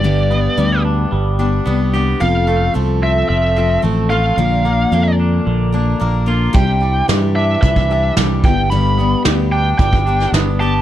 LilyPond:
<<
  \new Staff \with { instrumentName = "Lead electric guitar" } { \time 4/4 \key g \mixolydian \tempo 4 = 111 d''4. r2 r8 | f''4 r8 e''8 e''4 r8 f''8~ | f''4. r2 r8 | g''4 r8 e''8 e''4 r8 g''8 |
b''4 r8 g''8 g''4 r8 a''8 | }
  \new Staff \with { instrumentName = "Steel-string acoustic guitar" } { \time 4/4 \key g \mixolydian <g, d g b d' g'>8 <g b d' g'>8 <g b d' g'>4. <g b d' g'>8 <g b d' g'>8 <g b d' g'>8 | <f c' f' a'>8 <c' f' a'>8 <f c' f' a'>4. <c' f' a'>8 <f c' f' a'>8 <c' f' a'>8 | <bes, d f bes d' bes'>8 <f bes d' bes'>8 <f bes d' bes'>4. <f bes d' bes'>8 <f bes d' bes'>8 <f bes d' bes'>8 | <c g d' e' g'>8 <d' e' g'>8 <g d' e' g'>4. <d' e' g'>8 <g d' e' g'>8 <g b d' g'>8 |
<g, d g b d' g'>8 <g b d' g'>8 <g b d' g'>4. <g b d' g'>8 <g b d' g'>8 <g b d' g'>8 | }
  \new Staff \with { instrumentName = "Clean electric guitar" } { \time 4/4 \key g \mixolydian g,8 b8 g8 d'8 g8 d'8 b8 g'8 | f,8 a8 f8 c'8 f8 c'8 a8 f'8 | bes,8 bes8 d8 d'8 d8 d'8 bes8 f'8 | c8 g8 e8 d'8 e8 d'8 g8 g,8 |
g,8 b8 g8 d'8 g8 d'8 b8 g'8 | }
  \new Staff \with { instrumentName = "Fingered electric bass" } { \clef bass \time 4/4 \key g \mixolydian g,,4 d,4 g,,4 c,4 | f,,4 c,4 f,,4 a,,4 | bes,,4 f,4 bes,,4 bes,,4 | c,4 g,4 c,4 c,8 g,,8~ |
g,,4 d,4 g,,4 g,,4 | }
  \new DrumStaff \with { instrumentName = "Drums" } \drummode { \time 4/4 r4 r4 r4 r4 | r4 r4 r4 r4 | r4 r4 r4 r4 | <hh bd>4 <hh sn>4 <hh bd>16 bd8. <hh sn>8 bd8 |
hh4 <hh sn>4 <hh bd>16 bd8 sn16 <hh sn>4 | }
>>